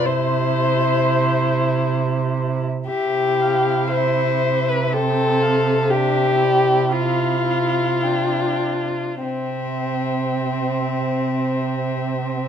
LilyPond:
<<
  \new Staff \with { instrumentName = "Violin" } { \time 3/4 \key c \major \tempo 4 = 58 c''2 r4 | e''8 f''8 e''4 g''8 f''8 | e''8 d''8 f''4 g''8 r8 | e''2. | }
  \new Staff \with { instrumentName = "Violin" } { \time 3/4 \key c \major e'2. | g'4 c''8. b'16 a'4 | g'4 f'2 | c'2. | }
  \new Staff \with { instrumentName = "Viola" } { \time 3/4 \key c \major c''2~ c''8 r8 | e'2 c'4 | d'8 e'4. d'4 | c'2. | }
  \new Staff \with { instrumentName = "Cello" } { \clef bass \time 3/4 \key c \major c2. | c2.~ | c2. | c2. | }
>>